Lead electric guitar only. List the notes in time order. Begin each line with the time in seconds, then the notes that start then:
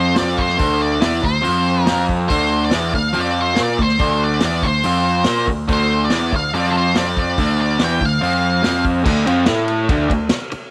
Already playing: C5
0.18 D5
0.37 C5
0.82 D5
1.04 D5
1.24 C5
1.83 A#4
2.29 C5
2.65 D5
2.95 F5
3.21 D5
3.41 C5
3.63 D5
3.82 C5
4.24 D5
4.46 D5
4.63 C5
5.73 C5
6.05 D5
6.36 F5
6.55 D5
6.70 A4
6.77 C5
6.97 D5
7.19 D5
7.61 D5
7.84 G5
8.05 F5